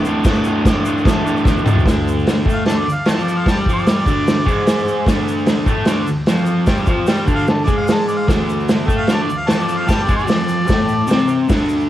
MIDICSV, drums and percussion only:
0, 0, Header, 1, 2, 480
1, 0, Start_track
1, 0, Tempo, 401875
1, 312, Time_signature, 4, 2, 24, 8
1, 14206, End_track
2, 0, Start_track
2, 0, Title_t, "Drums"
2, 59, Note_on_c, 9, 82, 80
2, 179, Note_off_c, 9, 82, 0
2, 290, Note_on_c, 9, 82, 100
2, 298, Note_on_c, 9, 36, 124
2, 300, Note_on_c, 9, 49, 77
2, 311, Note_on_c, 9, 38, 127
2, 409, Note_off_c, 9, 82, 0
2, 415, Note_on_c, 9, 82, 27
2, 417, Note_off_c, 9, 36, 0
2, 419, Note_off_c, 9, 49, 0
2, 430, Note_off_c, 9, 38, 0
2, 527, Note_off_c, 9, 82, 0
2, 527, Note_on_c, 9, 82, 71
2, 646, Note_off_c, 9, 82, 0
2, 780, Note_on_c, 9, 36, 120
2, 780, Note_on_c, 9, 49, 73
2, 789, Note_on_c, 9, 82, 94
2, 791, Note_on_c, 9, 38, 126
2, 899, Note_off_c, 9, 36, 0
2, 899, Note_off_c, 9, 49, 0
2, 908, Note_off_c, 9, 82, 0
2, 910, Note_off_c, 9, 38, 0
2, 1020, Note_on_c, 9, 82, 85
2, 1139, Note_off_c, 9, 82, 0
2, 1167, Note_on_c, 9, 82, 31
2, 1258, Note_on_c, 9, 36, 120
2, 1264, Note_on_c, 9, 49, 71
2, 1275, Note_on_c, 9, 38, 118
2, 1286, Note_off_c, 9, 82, 0
2, 1286, Note_on_c, 9, 82, 98
2, 1378, Note_off_c, 9, 36, 0
2, 1383, Note_off_c, 9, 49, 0
2, 1394, Note_off_c, 9, 38, 0
2, 1406, Note_off_c, 9, 82, 0
2, 1517, Note_on_c, 9, 82, 81
2, 1632, Note_off_c, 9, 82, 0
2, 1632, Note_on_c, 9, 82, 30
2, 1737, Note_on_c, 9, 36, 126
2, 1747, Note_on_c, 9, 38, 72
2, 1752, Note_off_c, 9, 82, 0
2, 1756, Note_on_c, 9, 82, 89
2, 1856, Note_off_c, 9, 36, 0
2, 1866, Note_off_c, 9, 38, 0
2, 1875, Note_off_c, 9, 82, 0
2, 1879, Note_on_c, 9, 82, 31
2, 1981, Note_on_c, 9, 45, 105
2, 1997, Note_off_c, 9, 82, 0
2, 1997, Note_on_c, 9, 82, 79
2, 2094, Note_on_c, 9, 43, 98
2, 2101, Note_off_c, 9, 45, 0
2, 2116, Note_off_c, 9, 82, 0
2, 2133, Note_on_c, 9, 82, 30
2, 2213, Note_off_c, 9, 43, 0
2, 2219, Note_on_c, 9, 36, 115
2, 2227, Note_on_c, 9, 46, 59
2, 2238, Note_on_c, 9, 38, 123
2, 2250, Note_off_c, 9, 82, 0
2, 2250, Note_on_c, 9, 82, 92
2, 2338, Note_off_c, 9, 36, 0
2, 2347, Note_off_c, 9, 46, 0
2, 2358, Note_off_c, 9, 38, 0
2, 2369, Note_off_c, 9, 82, 0
2, 2485, Note_on_c, 9, 82, 72
2, 2604, Note_off_c, 9, 82, 0
2, 2618, Note_on_c, 9, 82, 28
2, 2707, Note_on_c, 9, 46, 61
2, 2718, Note_on_c, 9, 38, 114
2, 2728, Note_off_c, 9, 82, 0
2, 2728, Note_on_c, 9, 82, 95
2, 2827, Note_off_c, 9, 46, 0
2, 2838, Note_off_c, 9, 38, 0
2, 2848, Note_off_c, 9, 82, 0
2, 2938, Note_on_c, 9, 36, 102
2, 2979, Note_on_c, 9, 82, 75
2, 3057, Note_off_c, 9, 36, 0
2, 3099, Note_off_c, 9, 82, 0
2, 3171, Note_on_c, 9, 46, 62
2, 3182, Note_on_c, 9, 38, 101
2, 3216, Note_on_c, 9, 82, 94
2, 3291, Note_off_c, 9, 46, 0
2, 3302, Note_off_c, 9, 38, 0
2, 3336, Note_off_c, 9, 82, 0
2, 3454, Note_on_c, 9, 82, 70
2, 3574, Note_off_c, 9, 82, 0
2, 3647, Note_on_c, 9, 46, 61
2, 3658, Note_on_c, 9, 38, 105
2, 3686, Note_on_c, 9, 82, 76
2, 3767, Note_off_c, 9, 46, 0
2, 3777, Note_off_c, 9, 38, 0
2, 3806, Note_off_c, 9, 82, 0
2, 3812, Note_on_c, 9, 82, 28
2, 3921, Note_off_c, 9, 82, 0
2, 3921, Note_on_c, 9, 82, 71
2, 4041, Note_off_c, 9, 82, 0
2, 4132, Note_on_c, 9, 46, 70
2, 4134, Note_on_c, 9, 36, 105
2, 4142, Note_on_c, 9, 38, 119
2, 4159, Note_on_c, 9, 82, 86
2, 4251, Note_off_c, 9, 46, 0
2, 4254, Note_off_c, 9, 36, 0
2, 4262, Note_off_c, 9, 38, 0
2, 4278, Note_off_c, 9, 82, 0
2, 4373, Note_on_c, 9, 36, 101
2, 4405, Note_on_c, 9, 82, 60
2, 4492, Note_off_c, 9, 36, 0
2, 4521, Note_off_c, 9, 82, 0
2, 4521, Note_on_c, 9, 82, 25
2, 4616, Note_on_c, 9, 46, 58
2, 4627, Note_off_c, 9, 82, 0
2, 4627, Note_on_c, 9, 38, 112
2, 4627, Note_on_c, 9, 82, 85
2, 4736, Note_off_c, 9, 46, 0
2, 4747, Note_off_c, 9, 38, 0
2, 4747, Note_off_c, 9, 82, 0
2, 4854, Note_on_c, 9, 36, 99
2, 4860, Note_on_c, 9, 82, 71
2, 4973, Note_off_c, 9, 36, 0
2, 4979, Note_off_c, 9, 82, 0
2, 5102, Note_on_c, 9, 46, 58
2, 5109, Note_on_c, 9, 82, 95
2, 5112, Note_on_c, 9, 38, 109
2, 5221, Note_off_c, 9, 46, 0
2, 5228, Note_off_c, 9, 82, 0
2, 5232, Note_off_c, 9, 38, 0
2, 5333, Note_on_c, 9, 36, 94
2, 5350, Note_on_c, 9, 82, 65
2, 5453, Note_off_c, 9, 36, 0
2, 5470, Note_off_c, 9, 82, 0
2, 5571, Note_on_c, 9, 46, 60
2, 5582, Note_on_c, 9, 38, 116
2, 5589, Note_on_c, 9, 82, 82
2, 5690, Note_off_c, 9, 46, 0
2, 5701, Note_off_c, 9, 38, 0
2, 5708, Note_off_c, 9, 82, 0
2, 5710, Note_on_c, 9, 82, 28
2, 5825, Note_off_c, 9, 82, 0
2, 5825, Note_on_c, 9, 82, 75
2, 5945, Note_off_c, 9, 82, 0
2, 6049, Note_on_c, 9, 36, 115
2, 6054, Note_on_c, 9, 46, 60
2, 6065, Note_on_c, 9, 38, 121
2, 6068, Note_on_c, 9, 82, 93
2, 6169, Note_off_c, 9, 36, 0
2, 6173, Note_off_c, 9, 46, 0
2, 6184, Note_off_c, 9, 38, 0
2, 6188, Note_off_c, 9, 82, 0
2, 6307, Note_on_c, 9, 82, 75
2, 6427, Note_off_c, 9, 82, 0
2, 6435, Note_on_c, 9, 82, 27
2, 6523, Note_on_c, 9, 46, 56
2, 6534, Note_on_c, 9, 38, 120
2, 6540, Note_off_c, 9, 82, 0
2, 6540, Note_on_c, 9, 82, 89
2, 6643, Note_off_c, 9, 46, 0
2, 6654, Note_off_c, 9, 38, 0
2, 6659, Note_off_c, 9, 82, 0
2, 6763, Note_on_c, 9, 36, 106
2, 6774, Note_on_c, 9, 82, 76
2, 6883, Note_off_c, 9, 36, 0
2, 6894, Note_off_c, 9, 82, 0
2, 6988, Note_on_c, 9, 46, 61
2, 6998, Note_on_c, 9, 38, 112
2, 7018, Note_on_c, 9, 82, 93
2, 7107, Note_off_c, 9, 46, 0
2, 7118, Note_off_c, 9, 38, 0
2, 7137, Note_off_c, 9, 82, 0
2, 7251, Note_on_c, 9, 82, 74
2, 7370, Note_off_c, 9, 82, 0
2, 7478, Note_on_c, 9, 46, 60
2, 7489, Note_on_c, 9, 38, 117
2, 7500, Note_on_c, 9, 82, 88
2, 7598, Note_off_c, 9, 46, 0
2, 7609, Note_off_c, 9, 38, 0
2, 7613, Note_off_c, 9, 82, 0
2, 7613, Note_on_c, 9, 82, 27
2, 7715, Note_off_c, 9, 82, 0
2, 7715, Note_on_c, 9, 82, 73
2, 7834, Note_off_c, 9, 82, 0
2, 7961, Note_on_c, 9, 82, 88
2, 7962, Note_on_c, 9, 46, 66
2, 7969, Note_on_c, 9, 36, 116
2, 7972, Note_on_c, 9, 38, 122
2, 8080, Note_off_c, 9, 82, 0
2, 8081, Note_off_c, 9, 46, 0
2, 8088, Note_off_c, 9, 36, 0
2, 8089, Note_on_c, 9, 82, 27
2, 8092, Note_off_c, 9, 38, 0
2, 8196, Note_off_c, 9, 82, 0
2, 8196, Note_on_c, 9, 82, 72
2, 8207, Note_on_c, 9, 36, 106
2, 8316, Note_off_c, 9, 82, 0
2, 8327, Note_off_c, 9, 36, 0
2, 8440, Note_on_c, 9, 82, 86
2, 8446, Note_on_c, 9, 46, 64
2, 8457, Note_on_c, 9, 38, 117
2, 8559, Note_off_c, 9, 82, 0
2, 8559, Note_on_c, 9, 82, 26
2, 8566, Note_off_c, 9, 46, 0
2, 8577, Note_off_c, 9, 38, 0
2, 8679, Note_off_c, 9, 82, 0
2, 8687, Note_on_c, 9, 82, 75
2, 8692, Note_on_c, 9, 36, 100
2, 8806, Note_off_c, 9, 82, 0
2, 8811, Note_off_c, 9, 36, 0
2, 8824, Note_on_c, 9, 82, 26
2, 8927, Note_on_c, 9, 46, 60
2, 8929, Note_off_c, 9, 82, 0
2, 8929, Note_on_c, 9, 82, 97
2, 8938, Note_on_c, 9, 38, 103
2, 9047, Note_off_c, 9, 46, 0
2, 9048, Note_off_c, 9, 82, 0
2, 9054, Note_on_c, 9, 82, 26
2, 9058, Note_off_c, 9, 38, 0
2, 9165, Note_off_c, 9, 82, 0
2, 9165, Note_on_c, 9, 82, 75
2, 9170, Note_on_c, 9, 36, 104
2, 9285, Note_off_c, 9, 82, 0
2, 9290, Note_off_c, 9, 36, 0
2, 9405, Note_on_c, 9, 82, 87
2, 9412, Note_on_c, 9, 46, 65
2, 9423, Note_on_c, 9, 38, 118
2, 9525, Note_off_c, 9, 82, 0
2, 9531, Note_off_c, 9, 46, 0
2, 9542, Note_off_c, 9, 38, 0
2, 9655, Note_on_c, 9, 82, 72
2, 9775, Note_off_c, 9, 82, 0
2, 9891, Note_on_c, 9, 46, 62
2, 9893, Note_on_c, 9, 36, 119
2, 9902, Note_on_c, 9, 38, 119
2, 9911, Note_on_c, 9, 82, 87
2, 10011, Note_off_c, 9, 46, 0
2, 10012, Note_off_c, 9, 36, 0
2, 10022, Note_off_c, 9, 38, 0
2, 10031, Note_off_c, 9, 82, 0
2, 10143, Note_on_c, 9, 82, 68
2, 10263, Note_off_c, 9, 82, 0
2, 10268, Note_on_c, 9, 82, 24
2, 10370, Note_on_c, 9, 46, 53
2, 10375, Note_off_c, 9, 82, 0
2, 10375, Note_on_c, 9, 82, 91
2, 10381, Note_on_c, 9, 38, 111
2, 10489, Note_off_c, 9, 46, 0
2, 10494, Note_off_c, 9, 82, 0
2, 10500, Note_off_c, 9, 38, 0
2, 10607, Note_on_c, 9, 36, 100
2, 10620, Note_on_c, 9, 82, 76
2, 10726, Note_off_c, 9, 36, 0
2, 10739, Note_off_c, 9, 82, 0
2, 10834, Note_on_c, 9, 46, 57
2, 10844, Note_on_c, 9, 38, 108
2, 10855, Note_on_c, 9, 82, 92
2, 10953, Note_off_c, 9, 46, 0
2, 10964, Note_off_c, 9, 38, 0
2, 10974, Note_off_c, 9, 82, 0
2, 11102, Note_on_c, 9, 82, 69
2, 11222, Note_off_c, 9, 82, 0
2, 11318, Note_on_c, 9, 46, 55
2, 11329, Note_on_c, 9, 38, 117
2, 11350, Note_on_c, 9, 82, 88
2, 11437, Note_off_c, 9, 46, 0
2, 11448, Note_off_c, 9, 38, 0
2, 11466, Note_off_c, 9, 82, 0
2, 11466, Note_on_c, 9, 82, 26
2, 11568, Note_off_c, 9, 82, 0
2, 11568, Note_on_c, 9, 82, 72
2, 11687, Note_off_c, 9, 82, 0
2, 11806, Note_on_c, 9, 82, 96
2, 11809, Note_on_c, 9, 36, 110
2, 11818, Note_on_c, 9, 46, 66
2, 11829, Note_on_c, 9, 38, 113
2, 11925, Note_off_c, 9, 82, 0
2, 11929, Note_off_c, 9, 36, 0
2, 11938, Note_off_c, 9, 46, 0
2, 11949, Note_off_c, 9, 38, 0
2, 12040, Note_on_c, 9, 82, 71
2, 12050, Note_on_c, 9, 36, 111
2, 12159, Note_off_c, 9, 82, 0
2, 12168, Note_on_c, 9, 82, 26
2, 12169, Note_off_c, 9, 36, 0
2, 12272, Note_off_c, 9, 82, 0
2, 12272, Note_on_c, 9, 82, 89
2, 12289, Note_on_c, 9, 46, 64
2, 12299, Note_on_c, 9, 38, 119
2, 12391, Note_off_c, 9, 82, 0
2, 12408, Note_off_c, 9, 46, 0
2, 12419, Note_off_c, 9, 38, 0
2, 12517, Note_on_c, 9, 82, 80
2, 12637, Note_off_c, 9, 82, 0
2, 12747, Note_on_c, 9, 82, 91
2, 12769, Note_on_c, 9, 36, 111
2, 12769, Note_on_c, 9, 46, 65
2, 12780, Note_on_c, 9, 38, 111
2, 12867, Note_off_c, 9, 82, 0
2, 12888, Note_off_c, 9, 36, 0
2, 12888, Note_off_c, 9, 46, 0
2, 12899, Note_off_c, 9, 38, 0
2, 12997, Note_on_c, 9, 82, 67
2, 13117, Note_off_c, 9, 82, 0
2, 13228, Note_on_c, 9, 82, 81
2, 13262, Note_on_c, 9, 46, 62
2, 13273, Note_on_c, 9, 38, 116
2, 13348, Note_off_c, 9, 82, 0
2, 13369, Note_on_c, 9, 82, 26
2, 13382, Note_off_c, 9, 46, 0
2, 13392, Note_off_c, 9, 38, 0
2, 13473, Note_off_c, 9, 82, 0
2, 13473, Note_on_c, 9, 82, 67
2, 13592, Note_off_c, 9, 82, 0
2, 13724, Note_on_c, 9, 82, 88
2, 13728, Note_on_c, 9, 46, 69
2, 13732, Note_on_c, 9, 36, 112
2, 13739, Note_on_c, 9, 38, 121
2, 13844, Note_off_c, 9, 82, 0
2, 13847, Note_off_c, 9, 46, 0
2, 13852, Note_off_c, 9, 36, 0
2, 13858, Note_off_c, 9, 38, 0
2, 13963, Note_on_c, 9, 82, 69
2, 14082, Note_off_c, 9, 82, 0
2, 14091, Note_on_c, 9, 82, 26
2, 14206, Note_off_c, 9, 82, 0
2, 14206, End_track
0, 0, End_of_file